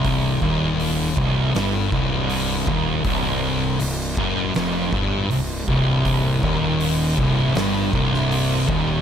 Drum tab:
HH |o---o---o---o---|o---o---o---o---|o---o---o---o---|
SD |--------o-------|--------o-------|--------o--o----|
BD |o-o---o---o---o-|o-----o---o---o-|o-o---o---o---o-|